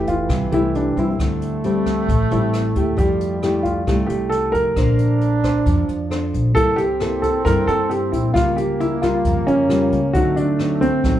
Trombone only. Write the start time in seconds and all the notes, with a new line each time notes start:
Already playing: E3
1.11 A#3
1.17 A3
2.98 G3
4.76 D4
6.56 C4
8.34 A#3
10.14 A3